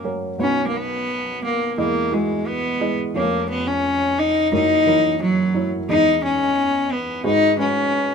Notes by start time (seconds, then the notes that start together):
Already playing: F#1 F#2 F#3 C#4 A#4
0.04 F#3 C#4 A#4
0.38 B1 B2 F#3 C#4 D#4 B4
0.67 A#3
0.76 B3
1.44 A#3
1.78 E2 E3 G#3 A#3 E4 D#5
2.11 G#3 E4 F#4
2.47 B3
2.80 G#3 E4 D#5
3.14 F1 F2 F3 A#3 C#4 C#5
3.49 B3
3.67 C#4
4.19 D#4
4.52 F#1 F#2 F#3 D#4 E4 A#4
4.86 E3 F#3 A#4
5.22 F#3
5.54 F#3 E4 C#5
5.88 E2 E3 G#3 D#4 D#5
6.24 C#4
6.92 B3
7.24 G#1 G#2 G#3 D#4 F#4 B4
7.58 G#3 C#4 F#4 B4